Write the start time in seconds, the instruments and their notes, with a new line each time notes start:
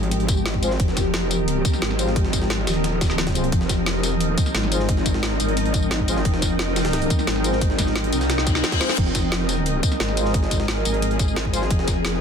Already playing: wobble bass G#1, synth drone F3 C4 G4, ambient pad A#4 D#5
0.03 closed hi-hat
0.11 closed hi-hat
0.20 closed hi-hat
0.29 kick, closed hi-hat, tambourine
0.37 tambourine
0.46 snare, closed hi-hat
0.54 kick
0.63 brass ensemble G#3 F4 C5, closed hi-hat, tambourine
0.71 snare
0.80 wobble bass F1, kick, closed hi-hat
0.88 snare
0.97 kick, snare, closed hi-hat, tambourine
1.14 snare, closed hi-hat
1.31 closed hi-hat, tambourine
1.48 closed hi-hat
1.65 kick, closed hi-hat, tambourine
1.73 snare, tambourine
1.82 wobble bass G#1, snare, closed hi-hat
1.90 snare
1.99 brass ensemble G#3 F4 C5, closed hi-hat, tambourine
2.08 snare
2.16 kick, closed hi-hat
2.25 snare
2.33 kick, closed hi-hat, tambourine
2.42 snare
2.50 snare, closed hi-hat
2.67 wobble bass D#1, snare, closed hi-hat, tambourine
2.84 snare, closed hi-hat
3.01 kick, snare, closed hi-hat, tambourine
3.10 snare, tambourine
3.18 snare, closed hi-hat
3.27 kick, snare, closed hi-hat
3.35 brass ensemble G#3 F4 C5, closed hi-hat, tambourine
3.44 closed hi-hat
3.52 wobble bass F1, synth drone D#4, kick, closed hi-hat
3.61 snare
3.69 kick, snare, closed hi-hat, tambourine
3.86 snare, closed hi-hat
4.03 ambient pad G5, snare, closed hi-hat, tambourine
4.11 wobble bass E1
4.21 closed hi-hat
4.38 kick, closed hi-hat, tambourine
4.46 snare, tambourine
4.55 wobble bass G#1, snare, closed hi-hat
4.63 snare
4.72 brass ensemble G#3 F4 C5, closed hi-hat, tambourine
4.80 snare
4.89 kick, closed hi-hat
4.97 snare
5.06 kick, closed hi-hat, tambourine
5.14 snare
5.23 snare, closed hi-hat
5.40 wobble bass G#1, closed hi-hat, tambourine
5.48 closed hi-hat
5.57 closed hi-hat
5.66 closed hi-hat
5.74 kick, closed hi-hat, tambourine
5.82 tambourine
5.91 snare, closed hi-hat
6.00 kick
6.08 brass ensemble G#3 F4 C5, closed hi-hat, tambourine
6.17 snare
6.25 wobble bass F1, kick, closed hi-hat
6.34 snare
6.42 kick, snare, closed hi-hat, tambourine
6.59 snare, closed hi-hat
6.76 snare, closed hi-hat, tambourine
6.85 snare, closed hi-hat
6.93 snare, closed hi-hat
7.02 closed hi-hat
7.10 kick, closed hi-hat, tambourine
7.19 snare, tambourine
7.27 wobble bass G#1, snare, closed hi-hat
7.36 snare
7.44 brass ensemble G#3 F4 C5, closed hi-hat, tambourine
7.53 snare
7.61 kick, closed hi-hat
7.70 snare
7.78 kick, snare, closed hi-hat, tambourine
7.87 snare
7.96 snare, closed hi-hat
8.04 closed hi-hat
8.13 wobble bass C2, snare, closed hi-hat, tambourine
8.21 snare, closed hi-hat, tambourine
8.30 snare, closed hi-hat, reverse cymbal
8.38 snare
8.47 kick, snare, closed hi-hat, tambourine
8.55 snare, tambourine
8.64 snare, closed hi-hat
8.72 kick, snare, closed hi-hat
8.81 brass ensemble G#3 F4 C5, snare, closed hi-hat, tambourine
8.89 snare
8.98 wobble bass F1, synth drone G#4, kick, closed hi-hat, crash
9.06 snare
9.15 kick, snare, closed hi-hat, tambourine
9.32 snare, closed hi-hat
9.49 ambient pad G#5, snare, closed hi-hat, tambourine
9.66 closed hi-hat
9.83 kick, closed hi-hat, tambourine
9.92 snare, tambourine
10.00 wobble bass G#1, snare, closed hi-hat
10.09 snare
10.17 brass ensemble G#3 F4 C5, closed hi-hat, tambourine
10.26 snare
10.34 kick, closed hi-hat
10.43 snare
10.51 kick, closed hi-hat, tambourine
10.60 snare
10.68 snare, closed hi-hat
10.85 wobble bass G#1, closed hi-hat, tambourine
10.94 closed hi-hat
11.02 closed hi-hat
11.11 closed hi-hat
11.19 kick, closed hi-hat, tambourine
11.28 tambourine
11.36 snare, closed hi-hat
11.45 kick
11.54 brass ensemble G#3 F4 C5, closed hi-hat, tambourine
11.62 snare
11.71 wobble bass F1, kick, closed hi-hat
11.79 snare
11.88 kick, snare, closed hi-hat, tambourine
12.05 snare, closed hi-hat